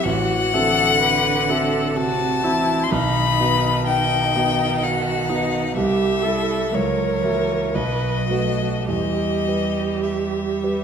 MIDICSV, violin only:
0, 0, Header, 1, 2, 480
1, 0, Start_track
1, 0, Tempo, 952381
1, 26, Time_signature, 3, 2, 24, 8
1, 3386, Tempo, 1025641
1, 3866, Tempo, 1145038
1, 5163, End_track
2, 0, Start_track
2, 0, Title_t, "Violin"
2, 0, Program_c, 0, 40
2, 18, Note_on_c, 0, 78, 101
2, 990, Note_on_c, 0, 81, 92
2, 997, Note_off_c, 0, 78, 0
2, 1429, Note_on_c, 0, 84, 63
2, 1437, Note_off_c, 0, 81, 0
2, 1465, Note_on_c, 0, 83, 95
2, 1472, Note_off_c, 0, 84, 0
2, 1946, Note_off_c, 0, 83, 0
2, 1949, Note_on_c, 0, 79, 88
2, 2435, Note_on_c, 0, 78, 76
2, 2443, Note_off_c, 0, 79, 0
2, 2903, Note_off_c, 0, 78, 0
2, 2906, Note_on_c, 0, 76, 84
2, 3396, Note_on_c, 0, 73, 71
2, 3403, Note_off_c, 0, 76, 0
2, 3869, Note_on_c, 0, 75, 68
2, 3875, Note_off_c, 0, 73, 0
2, 4338, Note_off_c, 0, 75, 0
2, 4341, Note_on_c, 0, 75, 72
2, 4825, Note_on_c, 0, 76, 48
2, 4831, Note_off_c, 0, 75, 0
2, 5163, Note_off_c, 0, 76, 0
2, 5163, End_track
0, 0, End_of_file